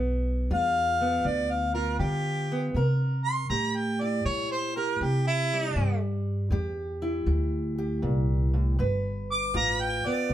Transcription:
Already playing: upright bass B1, steel-string acoustic guitar G2 B3
0.51 upright bass E2, steel-string acoustic guitar G3 F4, harmonica F5
1.01 steel-string acoustic guitar B3
1.24 upright bass D2, steel-string acoustic guitar D3, harmonica D5
1.51 harmonica F5
1.74 steel-string acoustic guitar F4, harmonica A#4
1.99 upright bass D3, steel-string acoustic guitar G3, harmonica G4
2.52 steel-string acoustic guitar B3
2.75 upright bass C3, steel-string acoustic guitar C3 A#4
3.24 harmonica C6
3.49 upright bass A2, steel-string acoustic guitar G3 G4, harmonica A#5
3.77 harmonica G5
4.01 steel-string acoustic guitar E4, harmonica D5
4.25 upright bass A#2, steel-string acoustic guitar G3, harmonica C#5
4.52 harmonica C5
4.76 steel-string acoustic guitar G4, harmonica A#4
5.01 upright bass C3, steel-string acoustic guitar G3, harmonica G4
5.27 harmonica E4
5.53 steel-string acoustic guitar G3
5.76 upright bass G2, steel-string acoustic guitar C3 G3
6.51 upright bass E2, steel-string acoustic guitar G3 G4
7.02 steel-string acoustic guitar E4
7.26 upright bass D2, steel-string acoustic guitar G3
7.78 steel-string acoustic guitar G4
8.02 upright bass C2, steel-string acoustic guitar A#2
8.54 steel-string acoustic guitar A2
8.79 upright bass G1, steel-string acoustic guitar G2 B4
9.31 harmonica D6
9.54 upright bass A1, steel-string acoustic guitar G3 F4, harmonica A#5
9.81 harmonica G5
10.06 steel-string acoustic guitar B3, harmonica D5, muted upright bass stroke
10.29 upright bass B1, steel-string acoustic guitar D3

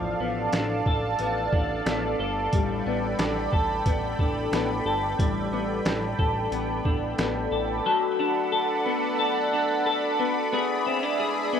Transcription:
Already playing: analog synth bass A1, clean electric guitar F3 B3 D4 A4, analog synth pad A4 D5 F5 A5
0.20 analog synth bass A1, clean electric guitar B3
0.53 analog synth bass A1, clean electric guitar D4, snare, closed hi-hat
0.86 analog synth bass A1, clean electric guitar A4, kick
1.19 analog synth bass A1, clean electric guitar B3, closed hi-hat
1.53 analog synth bass A1, clean electric guitar D4, kick
1.86 analog synth bass A1, clean electric guitar B3, snare, closed hi-hat
2.19 analog synth bass G1, clean electric guitar A4
2.53 analog synth bass A1, clean electric guitar G3, analog synth pad G5 B5, kick, closed hi-hat
2.86 analog synth bass A1, clean electric guitar B3
3.19 analog synth bass A1, clean electric guitar D4, snare, closed hi-hat
3.52 analog synth bass A1, clean electric guitar A4, kick
3.86 analog synth bass A1, clean electric guitar B3, kick, closed hi-hat
4.19 analog synth bass A1, clean electric guitar D4, kick
4.52 analog synth bass A1, clean electric guitar B3, snare, closed hi-hat
4.85 analog synth bass G1, clean electric guitar A4
5.19 analog synth bass A1, clean electric guitar G3, kick, closed hi-hat
5.52 analog synth bass A1, clean electric guitar B3
5.85 analog synth bass A1, clean electric guitar D4, snare, closed hi-hat
6.19 analog synth bass A1, clean electric guitar A4, kick
6.51 analog synth bass A1, clean electric guitar B3, closed hi-hat
6.85 analog synth bass A1, clean electric guitar D4, kick
7.18 analog synth bass A1, clean electric guitar B3, snare, closed hi-hat
7.51 analog synth bass A1, clean electric guitar A4
7.85 clean electric guitar F#3 A4, analog synth pad A4 D5 F#5 B5
8.19 clean electric guitar D4
8.52 clean electric guitar A4
8.86 clean electric guitar B3
9.19 clean electric guitar A4
9.53 clean electric guitar D4
9.86 clean electric guitar A4
10.19 clean electric guitar B3
10.52 clean electric guitar B3 G#4, analog synth pad G#4 E5
10.86 clean electric guitar C4
11.03 clean electric guitar D4
11.20 clean electric guitar G#4
11.53 clean electric guitar B3

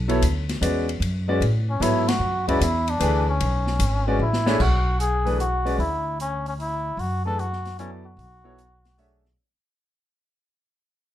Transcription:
Already playing: upright bass B1
0.08 grand piano F#3 B3 E4 A4 C#5, ride
0.22 upright bass D2, hi-hat pedal, ride
0.49 snare, ride
0.61 upright bass E2, grand piano G#3 C#4 F#4 B4 D5, hi-hat pedal, ride
0.89 ride
1.00 upright bass F#2, ride
1.28 grand piano G#3 C#4 F#4 B4 D5
1.41 upright bass A2, ride
1.70 muted trumpet C#4
1.80 upright bass G#2, grand piano F#3 B3 E4 A4 C#5, muted trumpet E4, hi-hat pedal, ride
2.08 muted trumpet F#4, snare, ride
2.19 upright bass F#2
2.47 grand piano G#3 C#4 F#4 B4 D5, muted trumpet E4, kick, ride
2.60 upright bass E2, muted trumpet E4, hi-hat pedal, ride
2.88 muted trumpet D4, ride
3.00 upright bass D2, grand piano E3 A3 D4 G#4 B4, hi-hat pedal, ride
3.29 muted trumpet C#4
3.40 upright bass B1, ride
3.67 snare
3.79 upright bass G#1, hi-hat pedal, ride
4.07 grand piano G#3 C#4 F#4 B4 D5, muted trumpet C#4
4.19 upright bass A1, muted trumpet E4
4.33 snare
4.46 grand piano A3 D4 G#4 C#5 E5, snare
4.59 upright bass B1, muted trumpet F#4, kick, crash
5.00 muted trumpet G#4, closed hi-hat
5.25 grand piano E3 A3 D4 G#4 B4, open hi-hat
5.40 muted trumpet F#4, closed hi-hat
5.65 grand piano G#3 C#4 F#4 B4 D5, open hi-hat
5.78 upright bass D2, muted trumpet E4, open hi-hat
6.20 muted trumpet C#4, closed hi-hat
6.46 muted trumpet C#4, open hi-hat
6.60 muted trumpet E4, open hi-hat
6.97 upright bass F#2, muted trumpet F#4, open hi-hat
7.25 grand piano E3 A3 D4 G#4 B4, muted trumpet A4
7.39 muted trumpet F#4, closed hi-hat
7.53 snare
7.65 snare, open hi-hat
7.79 grand piano F#3 B3 E4 A4 D5, muted trumpet C#4, closed hi-hat
8.06 muted trumpet F#4
8.17 upright bass B1, open hi-hat
8.44 grand piano F#3 B3 E4 A4 C#5
8.59 closed hi-hat
8.85 snare, open hi-hat
8.98 grand piano A3 D4 G#4 C#5 E5, open hi-hat
9.26 snare

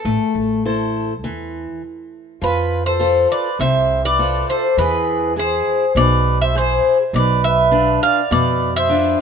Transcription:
Already playing: bouzouki A4
0.05 upright bass A1, steel-string acoustic guitar A3
0.35 upright bass A1
0.65 steel-string acoustic guitar E4 A4 C5
1.24 upright bass E2, steel-string acoustic guitar E3
2.42 upright bass F2, steel-string acoustic guitar F3, accordion F4, bouzouki B4
2.86 accordion A4, bouzouki C5
2.99 steel-string acoustic guitar F4 A4 C5
3.31 accordion B4, bouzouki D5
3.59 upright bass C2, steel-string acoustic guitar C3, accordion C5, bouzouki E5
4.05 accordion B4, bouzouki D5
4.19 steel-string acoustic guitar F4 A4 C5
4.50 accordion A4, bouzouki C5
4.77 upright bass E2, steel-string acoustic guitar E3, accordion G#4, bouzouki B4
5.36 steel-string acoustic guitar E4 G#4, accordion G#4, bouzouki C5
5.95 upright bass B1, steel-string acoustic guitar B2, accordion B4, bouzouki D5
6.41 accordion C5, bouzouki E5
6.55 steel-string acoustic guitar E4 G#4, accordion G#4, bouzouki C5
7.13 upright bass B1, steel-string acoustic guitar B2, bouzouki D5
7.18 accordion B4
7.44 accordion B4, bouzouki E5
7.71 steel-string acoustic guitar D4 F4 B4
8.03 accordion D5, bouzouki F5
8.31 upright bass F2, steel-string acoustic guitar B2, accordion B4, bouzouki D5
8.76 accordion C5, bouzouki E5
8.89 steel-string acoustic guitar D4 F4 B4

